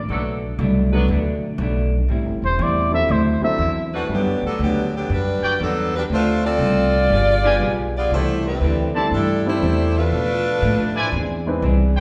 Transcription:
0.09 upright bass B1, hollow-body jazz guitar B2 F#3 A3 D4, saxophone section F#3 B3 D4 A4
0.59 upright bass C2, hollow-body jazz guitar B2 F#3 A3 D4
0.92 grand piano F#3 A3 B3 D4 A4, saxophone section F#3 B3 D4 B4
1.08 upright bass D2, hollow-body jazz guitar B2 F#3 A3 D4
1.58 upright bass B1, hollow-body jazz guitar B2 F#3 A3 D4
2.08 upright bass A1, hollow-body jazz guitar A2 G3 C4 E4
2.25 upright bass G1
2.42 upright bass E1, trumpet C5
2.58 upright bass E2, hollow-body jazz guitar A2 G3 C4 E4, trumpet D5
2.91 grand piano F#3 C4 D4 E4 A4, trumpet E5
3.08 upright bass D2, hollow-body jazz guitar D3 F#3 C4 E4, trumpet C5
3.42 grand piano F#3 C4 D4 E4 A4, trumpet E5, muted upright bass stroke
3.58 upright bass E2, hollow-body jazz guitar D3 F#3 C4 E4
3.94 saxophone section E3 G3 A3 C4 D4 F#4 B4
4.09 upright bass G2, hollow-body jazz guitar G2 F#3 B3 D4, grand piano G3 B3 D4 F#4 B4
4.13 saxophone section D3 F#3 B3 G4
4.26 upright bass F#2
4.42 upright bass D2
4.47 saxophone section F#3 B3 D4 A4
4.59 upright bass D2, hollow-body jazz guitar G2 F#3 B3 D4
4.63 saxophone section D3 F#3 B3 G4
4.96 saxophone section D3 F#3 B3 G4
5.09 upright bass F#2, hollow-body jazz guitar G2 F#3 B3 D4
5.13 saxophone section G3 D4 F#4 B4
5.42 trumpet section F#4 B4 D5 G5, muted upright bass stroke
5.59 upright bass E2, hollow-body jazz guitar G2 F#3 B3 D4, saxophone section A4
5.63 saxophone section F#3 B3 D4
5.96 saxophone section G3 D4 F#4 B4
6.09 upright bass D2, hollow-body jazz guitar D3 A3 C4 F4
6.13 saxophone section A3 D4 F4 C5
6.46 saxophone section C4 F4 A4 D5
6.58 upright bass C2, hollow-body jazz guitar D3 A3 C4 F4
7.10 upright bass G1, hollow-body jazz guitar G3 B3 F4 G#4
7.44 grand piano G3 B3 D4 F4 G#4, trumpet section G4 B4 F5 G#5
7.60 upright bass B1, hollow-body jazz guitar G3 B3 F4 G#4
7.98 saxophone section B3 F4 G#4 D5
8.10 upright bass C2, hollow-body jazz guitar C3 E3 A3, saxophone section A3 E4 G4
8.14 hollow-body jazz guitar D4, saxophone section C5
8.47 saxophone section G3 C4 E4 B4
8.60 upright bass D2, hollow-body jazz guitar C3 E3 A3
8.64 hollow-body jazz guitar D4
8.95 grand piano G3 C4 D4 E4 A4, trumpet section E4 C5 D5 A5
9.11 upright bass G2, hollow-body jazz guitar C3 E3 A3, saxophone section G3 D4 E4 A4
9.15 hollow-body jazz guitar D4
9.46 grand piano G3 C4 D4 E4 A4, saxophone section A3 E4 G4 C5
9.62 upright bass E2, hollow-body jazz guitar C3 E3 A3 D4
9.98 saxophone section A3 D4 F4 B4
10.12 upright bass B2, hollow-body jazz guitar B2 F3 A3 D4
10.62 upright bass A2, hollow-body jazz guitar B2 F3 A3 D4
10.96 trumpet section E4 C5 D5 G#5
11.12 upright bass E2, hollow-body jazz guitar E3 C4 D4
11.16 hollow-body jazz guitar G#4
11.46 grand piano G#3 C4 D4 E4 B4
11.62 upright bass C2, hollow-body jazz guitar E3 C4 D4 G#4
11.96 trumpet section D4 B4 C5 G5

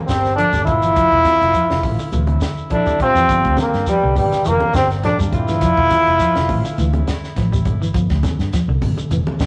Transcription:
0.06 fingered electric bass G1, bassoon C3, clean electric guitar D3, trombone C4, tenor saxophone C4, snare, closed hi-hat, shekere
0.25 snare, closed hi-hat, shekere
0.36 bassoon D3, clean electric guitar F3, trombone D4, tenor saxophone D4, closed hi-hat
0.53 fingered electric bass G1, clean electric guitar G3, high conga, shekere
0.65 bassoon E3, trombone E4, tenor saxophone F4, kick, closed hi-hat, low conga, shekere
0.82 clean electric guitar E3, closed hi-hat, shekere
0.96 fingered electric bass F1, clean electric guitar F3, kick, closed hi-hat, shekere
1.12 fingered electric bass E1, kick
1.25 muted clean electric guitar stroke, snare, closed hi-hat, high conga, shekere
1.40 fingered electric bass F1, snare, closed hi-hat, shekere
1.54 clean electric guitar F3, closed hi-hat, shekere
1.70 fingered electric bass F1, clean electric guitar D3, snare, closed hi-hat
1.83 fingered electric bass A1, kick, open hi-hat, high conga, low conga, shekere
1.99 clean electric guitar D3, shekere
2.12 fingered electric bass D2, clean electric guitar E3, closed hi-hat, high conga, low conga, shekere
2.27 closed hi-hat, high conga
2.41 clean electric guitar D3, snare, closed hi-hat, shekere
2.57 shekere
2.70 bassoon D3, clean electric guitar F3, trombone D4, tenor saxophone E4, kick, closed hi-hat, low conga
2.86 clean electric guitar G3, high conga, shekere
2.99 bassoon C3, trombone C4, tenor saxophone F4, kick, closed hi-hat, low conga, shekere
3.15 fingered electric bass F2, clean electric guitar E3, shekere
3.29 fingered electric bass G1, clean electric guitar F3, kick, closed hi-hat, shekere
3.44 fingered electric bass D2, kick, closed hi-hat
3.57 bassoon A#2, clean electric guitar D3, trombone A#3, tenor saxophone A#3, snare, closed hi-hat, high conga, shekere
3.73 fingered electric bass G2, snare, closed hi-hat, shekere
3.86 bassoon G2, clean electric guitar F3, tenor saxophone G3, trombone G3, closed hi-hat, shekere
4.03 fingered electric bass C2, clean electric guitar D3
4.15 fingered electric bass G1, bassoon G2, tenor saxophone G3, trombone G3, kick, open hi-hat, high conga, low conga, shekere
4.32 muted clean electric guitar stroke, snare, closed hi-hat, high conga, shekere
4.45 fingered electric bass F1, bassoon A#2, clean electric guitar E3, trombone A#3, tenor saxophone A#3, closed hi-hat, high conga, shekere
4.60 muted fingered electric bass stroke, high conga
4.74 fingered electric bass G1, bassoon C3, clean electric guitar D3, trombone C4, tenor saxophone C4, snare, closed hi-hat, shekere
4.90 snare, closed hi-hat, shekere
5.03 bassoon D3, clean electric guitar F3, trombone D4, tenor saxophone D4, snare, closed hi-hat, low conga
5.19 fingered electric bass G2, clean electric guitar G3, high conga, shekere
5.32 bassoon E3, trombone E4, tenor saxophone F4, kick, closed hi-hat, low conga, shekere
5.48 clean electric guitar E3, snare, closed hi-hat, high conga, shekere
5.61 fingered electric bass F1, clean electric guitar F3, kick, closed hi-hat, shekere
5.77 fingered electric bass E1, kick
5.90 clean electric guitar E3, snare, closed hi-hat, high conga, shekere
6.06 fingered electric bass F1, closed hi-hat, shekere
6.19 clean electric guitar F3, closed hi-hat, shekere
6.35 fingered electric bass F1, clean electric guitar D3, snare, closed hi-hat
6.49 fingered electric bass A1, kick, open hi-hat, high conga, low conga, shekere
6.65 clean electric guitar D3, shekere
6.78 fingered electric bass D2, clean electric guitar E3, closed hi-hat, high conga, shekere
6.93 closed hi-hat, high conga
7.07 clean electric guitar D3, snare, closed hi-hat, shekere
7.24 snare, shekere
7.36 fingered electric bass A1, clean electric guitar F3, kick, snare, closed hi-hat
7.52 clean electric guitar G3, high conga, shekere
7.65 fingered electric bass G1, kick, closed hi-hat, low conga, shekere
7.82 clean electric guitar E3, shekere
7.94 fingered electric bass G1, clean electric guitar F3, kick, closed hi-hat, shekere
8.10 fingered electric bass D2, kick, snare, closed hi-hat
8.23 clean electric guitar D3, snare, closed hi-hat, high conga, shekere
8.39 fingered electric bass G2, snare, closed hi-hat, shekere
8.53 clean electric guitar F3, snare, closed hi-hat, shekere
8.68 fingered electric bass C2, clean electric guitar D3
8.82 fingered electric bass G1, kick, open hi-hat, high conga, low conga, shekere
8.97 clean electric guitar D3, closed hi-hat, high conga, shekere
9.11 fingered electric bass F1, clean electric guitar E3, closed hi-hat, high conga, low conga, shekere
9.27 muted fingered electric bass stroke, high conga
9.39 fingered electric bass G1, clean electric guitar D3, snare, closed hi-hat, shekere

